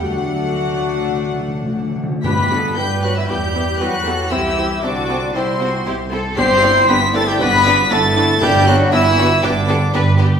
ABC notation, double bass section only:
X:1
M:4/4
L:1/8
Q:1/4=117
K:G
V:1 name="Double bass section" clef=bass
D,,6- D,, z | G,,2 G,,2 E,,2 E,,2 | C,,2 C,,2 C,,2 C,,2 | G,,,2 G,,,2 G,,,2 G,,,2 |
G,,,2 G,,,2 G,,,2 G,,,2 |]